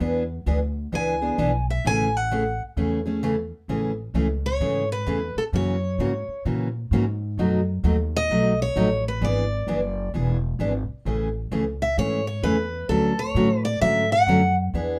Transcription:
0.00 upright bass E2, steel-string acoustic guitar E3 B3 D4 G#4
0.46 upright bass D2, steel-string acoustic guitar E3 B3 D4 G#4
0.92 upright bass C#2, steel-string acoustic guitar E3 B3 D4 G#4 G#5
1.22 steel-string acoustic guitar B3 D4 G#4
1.38 upright bass B1, steel-string acoustic guitar E3 B3 D4 G#4
1.70 steel-string acoustic guitar E5
1.85 upright bass A1, steel-string acoustic guitar C#3 E3 A3 C#4 G#4 G#5
2.17 steel-string acoustic guitar F#5
2.31 steel-string acoustic guitar C#3 E3 A3 C#4 G#4
2.77 upright bass E2, steel-string acoustic guitar C#3 E3 A3 C#4 G#4
3.06 steel-string acoustic guitar A3 C#4 G#4
3.23 steel-string acoustic guitar C#3 E3 A3 C#4 G#4
3.68 upright bass A1, steel-string acoustic guitar C#3 E3 A3 C#4 G#4
4.14 upright bass C#2, steel-string acoustic guitar C#3 E3 A3 C#4 G#4
4.46 steel-string acoustic guitar C#5
4.60 upright bass G#2, steel-string acoustic guitar C#3 E3 A3 C#4 G#4
4.92 steel-string acoustic guitar B4
5.06 upright bass E2, steel-string acoustic guitar C#3 E3 A3 C#4 G#4
5.36 steel-string acoustic guitar A4, muted upright bass stroke
5.52 upright bass F#2, steel-string acoustic guitar C#3 E3 A#3 C#4 F#4 C#5
5.98 upright bass G#2, steel-string acoustic guitar C#3 E3 A#3 C#4 F#4
6.28 muted upright bass stroke
6.45 upright bass A#2, steel-string acoustic guitar C#3 E3 A#3 C#4 F#4
6.91 upright bass G#2, steel-string acoustic guitar C#3 E3 A#3 C#4 F#4
7.38 upright bass F#2, steel-string acoustic guitar B2 F#3 A3 D#4 F#4
7.83 upright bass D#2, steel-string acoustic guitar B2 F#3 A3 D#4 F#4
8.16 steel-string acoustic guitar D#5
8.30 upright bass B1, steel-string acoustic guitar B2 F#3 A3 D#4 F#4
8.62 steel-string acoustic guitar C#5
8.76 upright bass A1, steel-string acoustic guitar B2 F#3 A3 D#4 F#4
9.08 steel-string acoustic guitar B4
9.21 upright bass G#1, steel-string acoustic guitar E3 B3 D4 G#4 D5
9.67 upright bass F#1, steel-string acoustic guitar E3 B3 D4 G#4
10.14 upright bass E1, steel-string acoustic guitar E3 B3 D4 G#4
10.59 upright bass G#1, steel-string acoustic guitar E3 B3 D4 G#4
10.88 muted upright bass stroke
11.05 upright bass A1, steel-string acoustic guitar C#3 E3 A3 C#4 G#4
11.51 upright bass C#2, steel-string acoustic guitar C#3 E3 A3 C#4 G#4
11.82 steel-string acoustic guitar E5
11.97 upright bass G#2, steel-string acoustic guitar C#3 E3 A3 C#4 G#4 C#5
12.27 steel-string acoustic guitar C#5
12.43 upright bass E2, steel-string acoustic guitar C#3 E3 A3 C#4 G#4 B4
12.89 upright bass D2, steel-string acoustic guitar D3 F#3 A3 C#4 F#4 A4
13.19 steel-string acoustic guitar C#5
13.35 upright bass A2, steel-string acoustic guitar D3 F#3 A3 C#4 F#4
13.65 steel-string acoustic guitar D5
13.81 upright bass G#2, steel-string acoustic guitar D3 F#3 A3 C#4 F#4 E5
14.12 steel-string acoustic guitar F#5
14.27 upright bass F#2, steel-string acoustic guitar D3 F#3 A3 C#4 F#4
14.74 upright bass E2, steel-string acoustic guitar E3 B3 D4 G#4

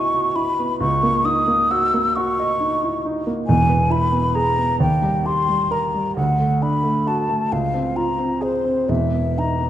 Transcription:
Already playing: grand piano C#2 B3 E4 F#4 D#5, flute C#6
0.15 grand piano F#4
0.36 grand piano E4, flute B5
0.59 grand piano B3
0.80 grand piano C#2, flute C#6
1.03 grand piano A#3
1.25 grand piano D#4, flute D#6
1.48 grand piano A#3
1.71 grand piano F#4, flute E6
1.94 grand piano A#3
2.16 grand piano F#4, flute C#6
2.39 grand piano D#5
2.60 grand piano D#4
2.84 grand piano E4
3.05 grand piano D#4
3.27 grand piano A#3
3.47 grand piano E1 E2, flute G#5
3.69 grand piano B3
3.90 grand piano E4, flute B5
4.12 grand piano B3
4.35 grand piano G#4, flute A#5
4.58 grand piano B3
4.80 grand piano D#2, flute G5
5.02 grand piano G3
5.25 grand piano G4, flute C6
5.48 grand piano G3
5.71 grand piano A#4, flute A#5
5.94 grand piano G3
6.16 grand piano D2, flute F#5
6.39 grand piano A3
6.62 grand piano D4, flute B5
6.84 grand piano A3
7.07 grand piano F#4, flute A5
7.29 grand piano A3
7.52 grand piano C#2, flute F5
7.74 grand piano C4
7.96 grand piano F4, flute A#5
8.19 grand piano C4
8.41 grand piano G#4, flute C5
8.65 grand piano C4
8.88 grand piano E1 E2, flute E5
9.13 grand piano B3
9.38 grand piano D#4, flute A#5
9.61 grand piano B3

